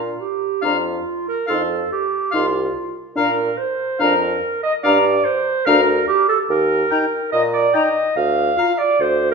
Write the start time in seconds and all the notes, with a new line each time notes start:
Already playing: A#2 F4
0.21 G4
0.62 F2 D4 F4 F5 A#5
1.28 A#4
1.47 F2 D#4 A4 F5 C6
1.92 G4
2.31 C2 D#4 F4 F5 C6
3.15 A#2 D4 A#4 F5 A#5
3.58 C5
3.99 F2 D4 A#4 F5 A#5
4.63 D#5
4.83 G2 D4 D5 F5 A#5
5.24 C5
5.66 D2 D4 A#4 F5 A#5
6.07 G4
6.29 A4
6.49 D#2 A#4
6.90 D#4 G5 A#5
7.32 A#2 D#5
7.53 D5
7.73 D#4 D#5 G5 A#5
8.16 D2 F5
8.56 F4 F5 A#5
8.78 D5
9.00 D2 C5